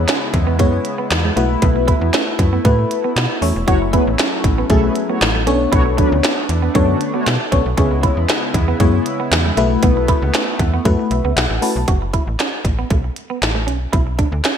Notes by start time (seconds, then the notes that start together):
Already playing: C#3 G#3 B3 E4
0.08 C#4, snare, clap, closed hi-hat
0.34 E2, muted clean electric guitar stroke, kick, closed hi-hat
0.47 B3
0.59 F#2 G#3 B3 E4 G#4 C#5, kick, closed hi-hat
0.73 muted clean electric guitar stroke
0.85 closed hi-hat
0.98 B3
1.11 E2, muted clean electric guitar stroke, snare, clap, closed hi-hat
1.24 G#3
1.36 B1 A3 E4 F#4 B4, closed hi-hat
1.62 B1 B3, kick, closed hi-hat
1.76 muted clean electric guitar stroke
1.88 E4, kick, closed hi-hat
2.01 E2
2.13 C#4, snare, clap, closed hi-hat
2.39 F#2, muted clean electric guitar stroke, kick, closed hi-hat
2.53 B3
2.65 A2 A3 E4 F#4 B4, kick, closed hi-hat
2.79 muted clean electric guitar stroke
2.91 closed hi-hat
3.04 B3
3.16 B2, snare, clap, closed hi-hat
3.41 E2 A3 C#4 E4 F#4 C#5, open hi-hat
3.56 E1
3.67 F#1 F#3 A3 C#4 E4 F#4 C#5, kick, closed hi-hat
3.82 muted clean electric guitar stroke
3.93 B3 E4 G#4 B4, kick, closed hi-hat
4.07 A1
4.19 C#4, snare, clap, closed hi-hat
4.44 A1, muted clean electric guitar stroke, kick, closed hi-hat
4.58 B3
4.70 B1 F#3 A3 E4 F#4 G#4 A4, kick, closed hi-hat
4.83 B3 G#4 B4, muted clean electric guitar stroke
4.96 closed hi-hat
5.09 A3 B3 F#4 C#5
5.21 A1, muted clean electric guitar stroke, snare, clap, closed hi-hat
5.35 A3
5.47 B1 A3 B3 C#4 D4 A4 C#5, closed hi-hat
5.72 B1 A3 E4 F#4 C#5, kick, closed hi-hat
5.86 muted clean electric guitar stroke
5.97 F#3 D4 B4, kick, closed hi-hat
6.12 D2
6.23 C#4, snare, clap, closed hi-hat
6.49 E2, muted clean electric guitar stroke, closed hi-hat
6.62 B3
6.74 F#2 F#3 A3 B3 D4 A4 C#5, kick, closed hi-hat
6.88 D3 C#4 F#4, muted clean electric guitar stroke
7.01 closed hi-hat
7.14 A3 B3 F#4 C#5
7.26 B2, snare, clap, closed hi-hat
7.52 B1 B3 C#4 D4 A4 C#5, kick, closed hi-hat
7.65 B1
7.77 C#2 C#3 G#3 B3 C#4 E4 G#4 C#5, kick, closed hi-hat
7.91 muted clean electric guitar stroke
8.03 E4, kick, closed hi-hat
8.17 E2
8.29 C#4, snare, clap, closed hi-hat
8.54 E2, muted clean electric guitar stroke, kick, closed hi-hat
8.68 B3
8.80 F#2 G#3 B3 E4 G#4 C#5, kick, closed hi-hat
8.94 muted clean electric guitar stroke
9.06 closed hi-hat
9.20 B3
9.31 E2, muted clean electric guitar stroke, snare, clap, closed hi-hat
9.46 G#3
9.57 B1 A3 B3 E4 F#4 B4, closed hi-hat
9.83 B1 B3, kick, closed hi-hat
9.97 muted clean electric guitar stroke
10.08 E4, kick, closed hi-hat
10.22 C#2
10.34 C#4, snare, clap, closed hi-hat
10.59 E2, muted clean electric guitar stroke, kick, closed hi-hat
10.74 B3
10.85 F#2 A3 E4 F#4 B4, kick, closed hi-hat
10.99 muted clean electric guitar stroke
11.11 B1 E5, closed hi-hat
11.24 C#2 B3
11.36 B1 F#5, snare, clap, closed hi-hat
11.50 A1
11.62 A3 C#4 E4 F#4 B4 A5, open hi-hat
11.76 B1
11.88 F#1 F#4, kick, closed hi-hat
12.02 muted clean electric guitar stroke
12.13 E4, kick, closed hi-hat
12.27 A1
12.40 C#4, snare, clap, closed hi-hat
12.65 A1, muted clean electric guitar stroke, kick, closed hi-hat
12.79 B3
12.90 B1 A3, kick, closed hi-hat
13.04 muted clean electric guitar stroke
13.16 closed hi-hat
13.30 B3
13.42 A1, muted clean electric guitar stroke, snare, clap, closed hi-hat
13.55 A3
13.67 B1 C#4, closed hi-hat
13.93 B1 E4, kick, closed hi-hat
14.07 muted clean electric guitar stroke
14.19 D4, kick, closed hi-hat
14.32 D2
14.44 C#4, snare, clap, closed hi-hat